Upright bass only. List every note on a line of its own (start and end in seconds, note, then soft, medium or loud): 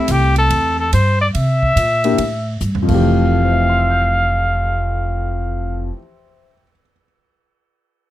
0.09 0.49 C2 medium
0.50 0.91 E2 medium
0.93 1.33 G2 medium
1.35 1.75 C3 medium
1.76 2.17 A#2 medium
2.18 2.59 A2 medium
2.61 2.87 G2 medium
2.89 5.89 F1 medium